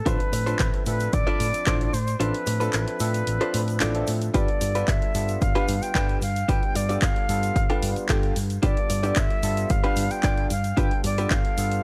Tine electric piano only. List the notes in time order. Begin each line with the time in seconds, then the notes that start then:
0.06 F3 C4 D4 A4 E5
0.46 F3 C4 D4 A4 E5
0.87 F3 C4 D4 A4 E5
1.28 F3 C4 D4 E5 B5
1.67 F3 C4 D4 E4 A4
2.20 F3 C4 D4 A4 E5
2.60 F3 C4 D4 A4 E5
3.00 F3 C4 D4 A4 E5
3.41 F3 C4 D4 E5 B5
3.80 F3 C4 D4 E4 A4
3.94 F3 C4 D4 A4 E5
4.34 G3 B3 D4 F4 A4
4.75 G3 B3 D4 F4 A4
5.14 G3 B3 D4 F4 A4
5.55 G3 B3 D4 F4 B4
5.95 G3 B3 D4 F4 A4
6.48 G3 B3 D4 F4 A4
6.89 G3 B3 D4 F4 A4
7.29 G3 B3 D4 F4 A4
7.70 G3 B3 D4 F4 B4
8.09 G3 B3 F4 A4
8.63 G3 B3 D4 F4 A4
9.04 G3 B3 D4 F4 A4
9.43 G3 B3 D4 F4 A4
9.84 G3 B3 D4 F4 B4
10.23 G3 B3 D4 F4 A4
10.77 G3 B3 D4 F4 A4
11.18 G3 B3 D4 F4 A4
11.58 G3 B3 D4 F4 A4